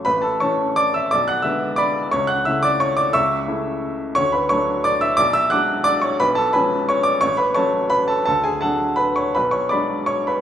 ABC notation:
X:1
M:3/4
L:1/8
Q:1/4=173
K:A
V:1 name="Grand piano"
[Bb] [Aa] [cac']2 [dd'] [ee'] | [dd'] [ff'] [ee']2 [dbd']2 | [cc'] [ff'] [ee'] [dd'] [cc'] [dd'] | [ec'e']6 |
[cc'] [Bb] [cc']2 [dd'] [ee'] | [dd'] [ee'] [fd'f']2 [dd'] [cc'] | [Bb] [Aa] [Bgb]2 [cc'] [dd'] | [cc'] [Bb] [cac']2 [Bb] [Aa] |
[Aa] [Gg] [Afa]2 [Bb] [cc'] | [Bb] [cc'] [dbd']2 [cc'] [Bb] |]
V:2 name="Grand piano" clef=bass
A,,,2 [E,A,C]4 | B,,,2 [D,G,B,]4 | C,,2 [C,A,E]4 | C,,2 [C,A,E]4 |
D,,2 [F,A,D]4 | B,,,2 [F,G,D]4 | B,,,2 [^E,G,C]4 | A,,,2 [F,A,C]4 |
D,,2 [F,A,D]4 | B,,,2 [F,G,D]4 |]